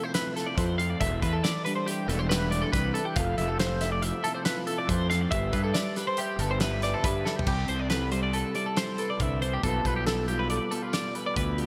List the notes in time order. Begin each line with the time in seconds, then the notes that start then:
Already playing: C3 F3 A3 E4 F4 A4
0.04 C5
0.14 F4 B4, snare, closed hi-hat
0.36 E4 A4, snare, closed hi-hat
0.47 D5
0.57 F2 F3 A4 C5, kick, closed hi-hat
0.78 F4 F5, closed hi-hat
0.90 D5
1.00 E1 E3 A4 E5, kick, closed hi-hat
1.22 E2 E4 B4, kick, closed hi-hat
1.33 A4
1.44 D5, snare, closed hi-hat
1.65 G3 D4 B4, closed hi-hat
1.76 C5
1.86 E4 G4, closed hi-hat
2.08 E1 E3 D4 A4, closed hi-hat
2.19 C5
2.29 E4 B4, snare, closed hi-hat
2.51 D4 D5, closed hi-hat
2.62 A4
2.72 C2 E3 B4, kick, snare, closed hi-hat
2.77 B4
2.94 A4, closed hi-hat
2.98 E4
3.05 G4
3.16 F1 F3 A4 F5, kick, closed hi-hat
3.38 F1 F4 E5, closed hi-hat
3.48 A4
3.59 C5, snare, closed hi-hat
3.81 A3 E4 E5, snare, closed hi-hat
3.92 D5
4.02 F4 E5, closed hi-hat
4.24 C3 E4 A4, closed hi-hat
4.35 C5
4.45 F4 B4, snare, closed hi-hat
4.67 E4 A4, closed hi-hat
4.78 D5
4.89 F2 F3 A4 C5, kick, closed hi-hat
5.10 F4 F5, snare, closed hi-hat
5.21 D5
5.31 G1 G3 G4 B4 E5, kick, closed hi-hat
5.35 E5
5.53 G2 B4 E5, kick, closed hi-hat
5.64 A4
5.74 D5, snare, closed hi-hat
5.96 G4 B4, snare, closed hi-hat
6.07 C5
6.17 G4 E5, closed hi-hat
6.39 G1 D3 A4 B4, closed hi-hat
6.51 C5
6.60 B4 E5, snare, closed hi-hat
6.82 B4 D5, snare, closed hi-hat
6.94 A4
7.04 G2 G3 B4 E5, kick, closed hi-hat
7.25 A4 E5, snare
7.36 G4, floor tom
7.47 C2 C3 G4, kick, crash
7.68 C2 E4 C5, closed hi-hat
7.79 D5
7.90 A4 B4, snare, closed hi-hat
8.11 G3 E4 C5, closed hi-hat
8.23 D5
8.33 A4, closed hi-hat
8.55 G3 E4 D5, closed hi-hat
8.66 A4
8.77 C5, snare, closed hi-hat
8.98 A4 B4, closed hi-hat
9.10 D5
9.20 C2 D3 E5, kick, closed hi-hat
9.42 C3 C5, closed hi-hat
9.53 G4
9.63 B1 B2 G3 F4 A4 B4, kick, closed hi-hat
9.84 B1 F4 B4, kick, closed hi-hat
9.96 G4
10.07 A4, snare, closed hi-hat
10.28 G3 F4 G4, closed hi-hat
10.39 B4
10.50 A4 D5, closed hi-hat
10.71 B2 F4 A4, closed hi-hat
10.82 F4
10.93 D5, snare, closed hi-hat
11.15 B4, closed hi-hat
11.26 D5
11.35 D2 B2 B4, kick, closed hi-hat
11.58 F4 G4, closed hi-hat